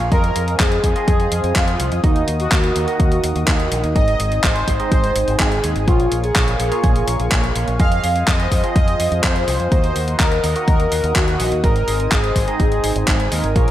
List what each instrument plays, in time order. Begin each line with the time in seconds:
0.12 fingered electric bass F2, tine electric piano F3 C4 F4 G#4 D#5, analog polysynth A#4, analog synth pad C5 F5 G#5 D#6, kick, closed hi-hat
0.24 closed hi-hat
0.36 fingered electric bass F2, closed hi-hat
0.48 closed hi-hat
0.60 fingered electric bass F2, analog polysynth G#4, kick, clap, closed hi-hat
0.72 closed hi-hat
0.84 fingered electric bass F2, kick, closed hi-hat
0.96 tine electric piano F3 C4 F4 G#4 D#5, closed hi-hat
1.08 fingered electric bass F2, analog polysynth G#4, kick, closed hi-hat
1.20 closed hi-hat
1.32 fingered electric bass F2, closed hi-hat
1.44 fingered electric bass F2, closed hi-hat
1.56 fingered electric bass F2, analog polysynth F4, kick, clap, closed hi-hat
1.68 closed hi-hat
1.80 fingered electric bass C2, closed hi-hat
1.92 fingered electric bass F2, closed hi-hat
2.04 fingered electric bass D#2, tine electric piano D#3 A#3 D#4 F#4 D#5, analog polysynth D#4, analog synth pad A#4 D#5 F#5, kick, closed hi-hat
2.16 closed hi-hat
2.28 fingered electric bass D#2, closed hi-hat
2.40 analog polysynth F#4, closed hi-hat
2.52 fingered electric bass D#2, analog polysynth F#4, kick, clap, closed hi-hat
2.64 closed hi-hat
2.76 fingered electric bass D#2, closed hi-hat
2.88 tine electric piano D#3 A#3 D#4 F#4 D#5, closed hi-hat
3.00 fingered electric bass D#2, kick, closed hi-hat
3.12 closed hi-hat
3.24 fingered electric bass D#2, closed hi-hat
3.36 fingered electric bass D#2, closed hi-hat
3.48 fingered electric bass D#2, kick, clap, closed hi-hat
3.60 closed hi-hat
3.72 fingered electric bass A#1, closed hi-hat
3.84 fingered electric bass D#2, closed hi-hat
3.96 fingered electric bass G#1, tine electric piano G#2 C4 D#4 G#4 D#5, analog synth pad C5 G#5, analog polysynth D#5, kick, closed hi-hat
4.08 closed hi-hat
4.20 fingered electric bass G#1, closed hi-hat
4.32 closed hi-hat
4.44 fingered electric bass G#1, analog polysynth C5, kick, clap, closed hi-hat
4.56 closed hi-hat
4.68 fingered electric bass G#1, kick, closed hi-hat
4.80 tine electric piano G#2 C4 D#4 G#4 D#5, closed hi-hat
4.92 fingered electric bass G#1, analog polysynth C5, kick, closed hi-hat
5.04 closed hi-hat
5.16 fingered electric bass G#1, closed hi-hat
5.28 fingered electric bass G#1, closed hi-hat
5.39 fingered electric bass G#1, analog polysynth G#4, kick, clap, closed hi-hat
5.52 closed hi-hat
5.64 fingered electric bass D#2, closed hi-hat
5.76 fingered electric bass G#1, closed hi-hat
5.87 fingered electric bass A#1, tine electric piano A#2 A#3 F4 G#4 C#5, analog polysynth F4, analog synth pad A#4 F5 C#6, kick, closed hi-hat
6.00 closed hi-hat
6.12 fingered electric bass A#1, closed hi-hat
6.23 analog polysynth G#4, closed hi-hat
6.35 fingered electric bass A#1, analog polysynth G#4, kick, clap, closed hi-hat
6.48 closed hi-hat
6.60 fingered electric bass A#1, closed hi-hat
6.72 tine electric piano A#2 A#3 F4 G#4 C#5, closed hi-hat
6.84 fingered electric bass A#1, kick, closed hi-hat
6.96 closed hi-hat
7.08 fingered electric bass A#1, closed hi-hat
7.20 fingered electric bass A#1, closed hi-hat
7.32 fingered electric bass A#1, kick, clap, closed hi-hat
7.44 closed hi-hat
7.56 fingered electric bass A#1, closed hi-hat
7.68 fingered electric bass A#1, closed hi-hat
7.80 fingered electric bass F2, tine electric piano F3 C4 F4 G#4 D#5, analog synth pad C5 D#6, analog polysynth F5, kick, closed hi-hat
7.92 closed hi-hat
8.04 fingered electric bass F2, open hi-hat
8.16 closed hi-hat
8.28 fingered electric bass F2, analog polysynth D#5, kick, clap, closed hi-hat
8.40 closed hi-hat
8.52 fingered electric bass F2, kick, open hi-hat
8.64 tine electric piano F3 C4 F4 G#4 D#5, closed hi-hat
8.76 fingered electric bass F2, analog polysynth D#5, kick, closed hi-hat
8.88 closed hi-hat
9.00 fingered electric bass F2, open hi-hat
9.12 fingered electric bass F2, closed hi-hat
9.24 fingered electric bass F2, analog polysynth C5, kick, clap, closed hi-hat
9.36 closed hi-hat
9.48 fingered electric bass C2, open hi-hat
9.60 fingered electric bass F2, closed hi-hat
9.72 fingered electric bass D#2, tine electric piano D#3 A#3 D#4 F#4 D#5, analog synth pad A#4 D#5 F#5 D#6, analog polysynth C5, kick, closed hi-hat
9.84 closed hi-hat
9.96 fingered electric bass D#2, open hi-hat
10.08 closed hi-hat
10.20 fingered electric bass D#2, analog polysynth A#4, kick, clap, closed hi-hat
10.32 closed hi-hat
10.44 fingered electric bass D#2, open hi-hat
10.56 tine electric piano D#3 A#3 D#4 F#4 D#5, closed hi-hat
10.68 fingered electric bass D#2, analog polysynth A#4, kick, closed hi-hat
10.80 closed hi-hat
10.92 fingered electric bass D#2, open hi-hat
11.04 fingered electric bass D#2, closed hi-hat
11.16 fingered electric bass D#2, analog polysynth F#4, kick, clap, closed hi-hat
11.28 closed hi-hat
11.40 fingered electric bass A#1, open hi-hat
11.52 fingered electric bass D#2, closed hi-hat
11.64 fingered electric bass G#1, tine electric piano G#2 C4 D#4 G#4 D#5, analog polysynth A#4, analog synth pad C5 G#5, kick, closed hi-hat
11.76 closed hi-hat
11.88 fingered electric bass G#1, open hi-hat
12.00 closed hi-hat
12.12 fingered electric bass G#1, analog polysynth G#4, kick, clap, closed hi-hat
12.24 closed hi-hat
12.36 fingered electric bass G#1, kick, open hi-hat
12.48 tine electric piano G#2 C4 D#4 G#4 D#5, closed hi-hat
12.60 fingered electric bass G#1, analog polysynth G#4, kick, closed hi-hat
12.72 closed hi-hat
12.84 fingered electric bass G#1, open hi-hat
12.96 fingered electric bass G#1, closed hi-hat
13.08 fingered electric bass G#1, kick, clap, closed hi-hat
13.20 closed hi-hat
13.32 fingered electric bass D#2, analog polysynth A#4, open hi-hat
13.44 fingered electric bass G#1, closed hi-hat
13.56 fingered electric bass A#1, tine electric piano A#2 A#3 F4 G#4 C#5, analog synth pad A#4 F5 C#6, kick, closed hi-hat
13.68 closed hi-hat